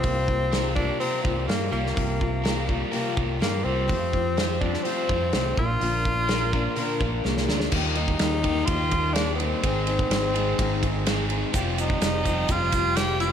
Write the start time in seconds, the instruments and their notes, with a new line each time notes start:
Already playing: overdriven electric guitar G3 G4, tenor saxophone C4
0.03 fingered electric bass C2, steel-string acoustic guitar C3 F3 A#3 F4 G4, kick, open hi-hat
0.28 steel-string acoustic guitar A#3 F4 G4, kick
0.52 steel-string acoustic guitar F3 A#3 F4 G4, overdriven electric guitar A#4, snare, open hi-hat
0.75 overdriven electric guitar G3, steel-string acoustic guitar A#3 F4 G4, tenor saxophone D4, kick
1.00 steel-string acoustic guitar C3 F3 A#3 F4 G4, tenor saxophone C4, overdriven electric guitar A#4, open hi-hat
1.23 fingered electric bass C2, steel-string acoustic guitar A#3 F4 G4, tenor saxophone C4, kick
1.48 fingered electric bass G2, steel-string acoustic guitar F3 A#3 F4 G4, tenor saxophone A#3, snare, open hi-hat
1.71 fingered electric bass C2, overdriven electric guitar G3, tenor saxophone A#3, steel-string acoustic guitar A#3 F4 G4
1.86 snare
1.95 fingered electric bass C2, steel-string acoustic guitar C3 F3 A#3 F4 G4, kick, open hi-hat
2.20 steel-string acoustic guitar A#3 F4 G4, kick
2.44 steel-string acoustic guitar F3 A#3 F4 G4, overdriven electric guitar A#4, snare, open hi-hat
2.67 overdriven electric guitar G3, steel-string acoustic guitar A#3 F4 G4, kick
2.91 steel-string acoustic guitar C3 F3 A#3 F4 G4, overdriven electric guitar A#4, open hi-hat
3.17 fingered electric bass C2, steel-string acoustic guitar A#3 F4 G4, kick
3.39 fingered electric bass G2, steel-string acoustic guitar F3 A#3 F4 G4, tenor saxophone A#3, snare, open hi-hat
3.64 fingered electric bass C2, overdriven electric guitar G3, steel-string acoustic guitar A#3 F4 G4, tenor saxophone C4
3.87 fingered electric bass F2, steel-string acoustic guitar F3 A3 C4 F4 G4, kick, open hi-hat
4.12 steel-string acoustic guitar C4 F4 G4, kick
4.37 steel-string acoustic guitar A3 C4 F4 G4, overdriven electric guitar C5, snare, open hi-hat
4.60 overdriven electric guitar G3, steel-string acoustic guitar C4 F4 G4, tenor saxophone D4, kick
4.74 snare
4.84 steel-string acoustic guitar F3 A3 C4 F4 G4, tenor saxophone C4, overdriven electric guitar C5, open hi-hat
5.09 fingered electric bass F2, steel-string acoustic guitar C4 F4 G4, kick
5.33 fingered electric bass C2, steel-string acoustic guitar A3 C4 F4 G4, snare, open hi-hat
5.57 fingered electric bass A#1, overdriven electric guitar A#2, steel-string acoustic guitar F3 A#3 D4 A#4, tenor saxophone F4, kick
5.81 fingered electric bass A#1, steel-string acoustic guitar A#2 D3 F3 A#3 D4 A#4, open hi-hat
6.05 steel-string acoustic guitar F3 A#3 D4 A#4, kick
6.29 steel-string acoustic guitar F3 A#3 D4 A#4, snare, open hi-hat
6.53 steel-string acoustic guitar F3 A#3 D4 A#4, kick
6.76 steel-string acoustic guitar A#2 D3 F3 A#3 D4 A#4, open hi-hat
7.00 fingered electric bass A#1, steel-string acoustic guitar F3 A#3 D4 A#4, overdriven electric guitar F4, kick
7.24 fingered electric bass C2, steel-string acoustic guitar F3 A#3 D4 A#4, snare
7.37 snare
7.48 fingered electric bass D2, steel-string acoustic guitar F3 A#3 D4 A#4, snare
7.60 snare
7.72 fingered electric bass D#2, steel-string acoustic guitar D#3 F3 A#3 D#4 G4, overdriven electric guitar G3, kick, crash
7.95 steel-string acoustic guitar A#3 D#4 G4, tenor saxophone D#4, ride
8.08 kick
8.19 fingered electric bass D#2, steel-string acoustic guitar F3 A#3 D#4 G4, snare, ride
8.44 overdriven electric guitar D#3 G3, steel-string acoustic guitar A#3 D#4 G4, kick, ride
8.65 fingered electric bass D#2, steel-string acoustic guitar D#3 F3, tenor saxophone F4, kick, ride
8.70 steel-string acoustic guitar A#3 D#4 G4
8.91 steel-string acoustic guitar A#3 D#4 G4, kick, ride
9.13 overdriven electric guitar D#3 G3, steel-string acoustic guitar F3 A#3, tenor saxophone D4, snare, ride
9.18 steel-string acoustic guitar D#4 G4
9.35 tenor saxophone C4, steel-string acoustic guitar G4
9.40 steel-string acoustic guitar A#3 D#4, ride
9.63 fingered electric bass G#1, steel-string acoustic guitar G#2 D#3 G#3 C4 D#4 G#4, kick, ride
9.87 steel-string acoustic guitar G#3 C4 D#4 G#4, ride
9.99 kick
10.11 fingered electric bass G#1, steel-string acoustic guitar G#3 C4 D#4 G#4, snare, ride
10.35 overdriven electric guitar G#2 D#3, steel-string acoustic guitar G#3 C4 D#4 G#4, ride
10.59 fingered electric bass G#1, steel-string acoustic guitar G#2 D#3 G#3 C4 D#4 G#4, kick, ride
10.83 steel-string acoustic guitar G#3 C4 D#4 G#4, kick, ride
11.05 overdriven electric guitar G#2 D#3, steel-string acoustic guitar G#3 C4 D#4 G#4, snare, ride
11.29 steel-string acoustic guitar G#3 C4 D#4 G#4, ride
11.53 fingered electric bass F1, steel-string acoustic guitar F3 C4 F4 G4, overdriven electric guitar G3, kick, ride, shaker
11.77 steel-string acoustic guitar C4 F4 G4, tenor saxophone D#4, ride, shaker
11.90 kick
12.01 fingered electric bass F1, steel-string acoustic guitar F3 C4 F4 G4, snare, ride, shaker
12.24 overdriven electric guitar F3 G3, steel-string acoustic guitar C4 F4 G4, kick, ride, shaker
12.48 fingered electric bass F1, steel-string acoustic guitar F3 C4 F4 G4, tenor saxophone F4, kick, ride, shaker
12.72 steel-string acoustic guitar C4 F4 G4, kick, ride, shaker
12.95 steel-string acoustic guitar F3 C4 F4 G4, overdriven electric guitar G3, tenor saxophone G4, snare, ride, shaker
13.19 steel-string acoustic guitar C4 F4 G4, tenor saxophone F4, ride, shaker